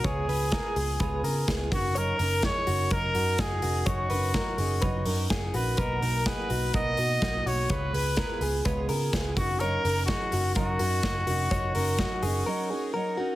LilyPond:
<<
  \new Staff \with { instrumentName = "Clean electric guitar" } { \time 4/4 \key fis \major \tempo 4 = 126 cis''8 b'8 ais'8 gis'8 b'8 ais'8 gis'8 fis'8 | cis''8 ais'8 gis'8 fis'8 ais'8 fis'4 fis'8 | cis''8 b'8 ais'8 gis'8 b'8 ais'8 gis'8 fis'8 | b'8 ais'8 gis'8 fis'8 ais'8 fis'4 fis'8 |
cis''8 b'8 ais'8 gis'8 b'8 ais'8 gis'8 fis'8 | cis''8 ais'8 gis'8 fis'8 ais'8 fis'4 fis'8 | cis''8 ais'8 fis'8 gis'8 ais'8 gis'8 ais'8 fis'8 | }
  \new Staff \with { instrumentName = "Trumpet" } { \time 4/4 \key fis \major gis'2. r8 fis'8 | ais'4 cis''4 ais'4 gis'4 | fis'2. r8 b'8 | ais'4 b'4 dis''4. cis''8 |
b'2 r4. fis'8 | ais'4 fis'4 fis'2~ | fis'2. r4 | }
  \new Staff \with { instrumentName = "Twelve-string acoustic guitar" } { \time 4/4 \key fis \major <cis gis b eis' gis'>8 <b eis' gis'>8 <gis b eis' gis'>8 <b eis' gis'>8 <cis gis b eis' gis'>8 <b eis' gis'>8 <gis b eis' gis'>8 <cis' dis' ais'>8 | <fis cis' dis' ais'>8 <cis' dis' ais'>8 <fis cis' dis' ais'>8 <cis' dis' ais'>8 <fis cis' dis' ais'>8 <cis' dis' ais'>8 <fis cis' dis' ais'>8 <cis' dis' ais'>8 | <fis cis' dis' ais'>8 <cis' dis' ais'>8 <fis cis' dis' ais'>8 <cis' dis' ais'>8 <fis cis' dis' ais'>8 <cis' dis' ais'>8 <fis cis' dis' ais'>8 <cis' dis' ais'>8 | <b, fis ais dis' fis'>8 <ais dis' fis'>8 <fis ais dis' fis'>8 <ais dis' fis'>8 <b, fis ais dis' fis'>8 <ais dis' fis'>8 <fis ais dis' fis'>8 <ais dis' fis'>8 |
<cis gis b eis' gis'>8 <b eis' gis'>8 <gis b eis' gis'>8 <b eis' gis'>8 <cis gis b eis' gis'>8 <b eis' gis'>8 <gis b eis' gis'>8 <cis' dis' ais'>8 | <fis cis' dis' ais'>8 <cis' dis' ais'>8 <fis cis' dis' ais'>8 <cis' dis' ais'>8 <fis cis' dis' ais'>8 <cis' dis' ais'>8 <fis dis' ais'>8 <cis' dis' ais'>8 | <fis cis' dis' ais'>8 <cis' dis' ais'>8 <fis cis' dis' ais'>8 <cis' dis' ais'>8 <fis cis' dis' ais'>8 <cis' dis' ais'>8 <fis cis' dis' ais'>8 <cis' dis' ais'>8 | }
  \new Staff \with { instrumentName = "Picked electric bass" } { \clef bass \time 4/4 \key fis \major cis,8 cis,8. r16 cis,8 cis,8 cis8 cis,8 fis,,8~ | fis,,8 fis,,8. r16 fis,,8 fis,,8 fis,8 fis,,8 eis,,8 | fis,,8 fis,,8. r16 fis,,8 fis,,8 fis,8 fis,,8 ais,,8 | b,,8 b,,8. r16 b,,8 b,,8 b,8 b,,8 b,,8 |
cis,8 cis,8. r16 cis,8 cis,8 cis8 cis,8 fis,,8~ | fis,,8 fis,,8. r16 fis,,8 fis,,8 fis,8 fis,,8 eis,,8 | fis,,8 fis,,8. r16 fis,,8 r2 | }
  \new DrumStaff \with { instrumentName = "Drums" } \drummode { \time 4/4 <hh bd>8 hho8 <hh bd sn>8 hho8 <hh bd>8 hho8 <hh bd sn>8 <hho bd>8 | hh8 hho8 <hh bd sn>8 hho8 <hh bd>8 hho8 <hh bd sn>8 hho8 | <hh bd>8 hho8 <hh bd sn>8 hho8 <hh bd>8 hho8 <hh bd sn>8 hho8 | <hh bd>8 hho8 <hh bd sn>8 hho8 <hh bd>8 hho8 <hh bd sn>8 hho8 |
<hh bd>8 hho8 <hh bd sn>8 hho8 <hh bd>8 hho8 <hh bd sn>8 <hho bd>8 | hh8 hho8 <hh bd sn>8 hho8 <hh bd>8 hho8 <hh bd sn>8 hho8 | <hh bd>8 hho8 <hh bd sn>8 hho8 r4 r4 | }
>>